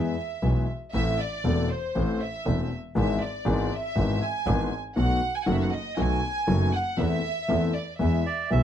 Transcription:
Already playing: E2 E3 G#3 B3 G#4 E5
0.42 B1 B2 E3 G#3 B3 G#4
0.93 A1 A2 E3 A3 C4 A4 E5
1.19 D5
1.44 E1 E2 E3 A3 C4 A4
1.70 C5
1.95 A1 A2 E3 A3 C4 A4
2.22 E5
2.45 E1 E2 E3 A3 C4 A4
2.95 G#1 G#2 E3 G#3 B3 G#4 E5
3.22 D5
3.45 G#1 G#2 E3 G#3 B3 G#4
3.73 E5
3.95 G#1 G#2 E3 G#3 B3 G#4
4.23 G#5
4.46 G#1 G#2 E3 G#3 B3 G#4
4.96 B1 B2 D#3 A3 B3 F#4 F#5
5.35 G#5
5.45 F#1 F#2 D#3 A3 B3 F#4 F#5
5.53 E5
5.63 F#5
5.72 D#5
5.97 B1 B2 D#3 A3 B3 F#4 G#5
6.47 F#1 F#2 D#3 A3 B3 F#4
6.75 F#5
6.97 E2 E3 A3 C4 A4 E5
7.48 E2 E3 A3 C4 A4
7.75 D5
7.99 E2 E3 G#3 B3 G#4 E5
8.26 D5
8.50 B1 B2 E3 G#3 B3 G#4 E5

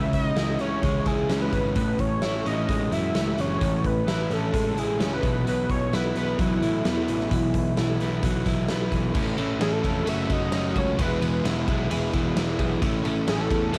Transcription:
Already playing: C#2 C#3 E3 G#3 C#4 E4 G#4 E5
0.13 C#3 E3 D#5, kick, closed hi-hat
0.36 C#2 C#3 E3 G#3 E4, snare, closed hi-hat
0.59 C#2 C#3 E3 C#4 C#5, closed hi-hat
0.83 C#2 C#3 E3 G#3, kick, closed hi-hat
1.06 C#2 C#3 E3 E4 G#4, kick, closed hi-hat
1.29 C#2 C#3 E3 G#3 C#4, snare, closed hi-hat
1.42 B4
1.53 G#1 C#3 E3, kick, closed hi-hat
1.75 A1 A2 E3 A3 B4, kick, closed hi-hat
1.99 A1 A2 E3 C#5, kick, closed hi-hat
2.22 A1 A2 E3 A3 E4, snare, closed hi-hat
2.45 A1 A2 E3 C#4 D#5, closed hi-hat
2.68 A1 A2 E3 G#3, kick, closed hi-hat
2.91 F#2 A2 E3 E4 E5, closed hi-hat
3.15 C#2 A2 E3 A3 C#4, snare, closed hi-hat
3.38 F#1 A2 E3 C#5, closed hi-hat
3.61 A1 A2 E3 A3, kick, closed hi-hat
3.84 A2 E3 B4, kick, closed hi-hat
4.07 A1 A2 E3 A3 E4, snare, closed hi-hat
4.30 A1 A2 C#4 A4, closed hi-hat
4.53 A1 A2 E3 G#3, kick, closed hi-hat
4.77 A1 A2 E3 E4 G#4, closed hi-hat
4.99 C#2 A2 E3 A3 C#4, snare, closed hi-hat
5.13 B4
5.22 B1 B2 E3 B3, kick, closed hi-hat
5.45 B1 B2 E3 B3 B4, closed hi-hat
5.69 B1 E3 C#5, kick, closed hi-hat
5.91 B1 B2 E3 B3 E4 B4, snare, closed hi-hat
6.15 B1 E3 B3 B4, closed hi-hat
6.39 B1 B2 E3 F#3 E4, kick, closed hi-hat
6.62 A2 B2 E3 E4, closed hi-hat
6.85 E2 B2 E3 B3, snare, closed hi-hat
7.08 A1 B2 E3, closed hi-hat
7.20 snare
7.31 B1 B2 E3 B3, kick, closed hi-hat
7.54 B2 E3, kick, closed hi-hat
7.77 B1 B2 E3 B3 E4, snare, closed hi-hat
8.00 B1 B2 E3 B3, closed hi-hat
8.23 B1 B2 E3 F#3, kick, closed hi-hat
8.46 B1 B2 E3 E4, kick, closed hi-hat
8.68 B1 B2 E3 B3, snare, closed hi-hat
8.92 B1 B2 E3, kick, closed hi-hat
9.14 A1 A2 E3 A3 C#4 E4, kick, crash
9.37 A1 E3 A3 C#4 E4 A4, ride
9.60 A1 E3 A3 C#4 E4 G#4, snare, ride
9.72 A4
9.83 F1 A3 C#4 E4, kick, ride
10.06 F#1 F#3 A3 C#4 F#4 E5, ride
10.30 F#1 A3 C#4 F#4 D#5, kick, ride
10.52 F#1 F#3 A3 C#4 F#4, snare, ride
10.76 C#2 F#3 A3 C#4 F#4 C#5, kick, ride
10.99 E1 E3 G#3 B3 E4 B4, kick, ride
11.21 E1 E3 G#3 B3 E4 G#4, ride
11.44 E1 E3 G#3 B3 E4, snare, ride
11.68 B1 G#3 B3 E4, kick, ride
11.90 E1 E3 G#3 B3 E4 G#4, ride
12.13 E1 G#3 B3 E4, kick, ride
12.36 E1 E3 G#3 B3 E4, snare, ride
12.59 B1 E3 G#3 B3 G#4, kick, ride
12.81 A1 A2 E3 A3 C#4 E4, kick, ride
13.04 A1 E3 A3 C#4 E4 A4, ride
13.27 A1 E3 A3 C#4 E4 G#4, snare, ride
13.41 A4
13.50 E2 A3 C#4 E4, kick, ride
13.72 F#1 F#2 C#3 F#3 A3 C#4 A4 E5, ride

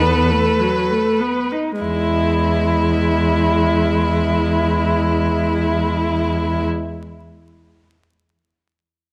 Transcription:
Already playing: E2 A4 B4
0.02 B3
0.30 A3
0.59 F#3
0.91 A3
1.20 B3
1.52 D#4
1.82 E2 G#3 E4

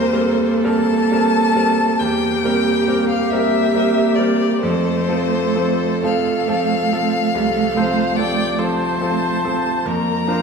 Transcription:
Already playing: E2 G3 A#3 C4 A#4 C5
0.13 G3 C4 A4 A#4
0.64 G3 C4 A#4 A5
1.12 G3 C4 A#4
1.56 G3 C4 A#4
1.99 E2 A#3 G4 G5
2.45 G3 C4 A#4
2.88 G3 C4 A#4
3.09 F5
3.31 G3 A#3 C4 A#4 E5
3.75 G3 C4 A#4
4.16 G3 C4 A#4 D5
4.61 F2 A3 A4 C5
5.09 F3 C4 A4
5.55 F3 C4 A4
6.03 F3 A3 C4 A4 F5
6.48 F3 C4 A4
6.92 F3 C4 A4
7.35 C2 A4
7.76 F3 C4 A4 C5
8.17 F3 C4 A4 D5 G5
8.58 F3 A3 C4 A4 C5 A5
9.01 F3 C4 A4
9.45 F3 C4 A4
9.85 F2 A#3 A#4 A#5
10.28 F3 D4 A#4 C5

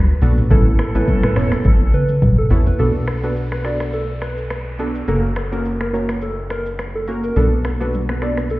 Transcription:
Already playing: D2 F#3 D4 B4
0.22 B1 B3 D4 F#4 A4, open hi-hat, high conga, shaker
0.38 mid tom, high conga, shaker
0.50 A1 E3 B3 C#4 E4 A4, kick, low conga, shaker
0.67 high conga
0.79 finger snap, cross-stick, shaker
0.95 A1 B3 C#4 E4 A4 B4, high conga, shaker
1.08 kick, low conga, shaker
1.23 B4, finger snap, cross-stick, mid tom, high conga
1.36 E1 B3 C#4 E4 A4 C#5, finger snap, cross-stick, open hi-hat, shaker
1.52 finger snap, cross-stick, high conga, shaker
1.64 A1 A4, kick, high tom, shaker
1.81 high conga
1.94 B4, mid tom, shaker
2.09 mid tom, shaker
2.22 B1, kick, mid tom, low conga, shaker
2.38 A4
2.50 A1 B3 C#4 E4 A4, floor tom, open hi-hat, high conga, shaker
2.66 B4, floor tom, high conga, shaker
2.79 B1 B3 D4 F#4 A4, downlifter, shaker
3.07 finger snap, cross-stick, shaker
3.23 B3 D4 F#4 A4 B4, shaker
3.37 shaker
3.52 B4, finger snap, cross-stick
3.65 B3 D4 F#4 A4 D5, finger snap, cross-stick, shaker
3.80 finger snap, cross-stick, shaker
3.93 A4, shaker
4.22 B4, finger snap, cross-stick, shaker
4.37 shaker
4.50 finger snap, cross-stick, shaker
4.79 B3 D4 F#4 A4, shaker
4.95 shaker
5.08 F#1 A#3 C#4 F#4 A4 A#4, shaker
5.36 finger snap, cross-stick, shaker
5.52 A#3 C#4 F#4 A#4, shaker
5.65 shaker
5.81 A#4, finger snap, cross-stick
5.93 A#3 C#4 F#4 A#4 C#5, shaker
6.09 finger snap, cross-stick, shaker
6.21 A4, shaker
6.50 A#4, finger snap, cross-stick, shaker
6.66 shaker
6.79 finger snap, cross-stick, shaker
6.95 A4
7.07 A#3 C#4 F#4 A#4, shaker
7.24 A#4, shaker
7.36 B1 B3 D4 F#4 A4, low conga, shaker
7.53 high conga
7.64 finger snap, cross-stick, shaker
7.80 B3 D4 F#4 A4 B4, high conga, shaker
7.94 low conga, shaker
8.09 B4, finger snap, cross-stick, high conga
8.22 B3 D4 F#4 A4 D5, finger snap, cross-stick, shaker
8.37 finger snap, cross-stick, high conga, shaker
8.50 A4, shaker

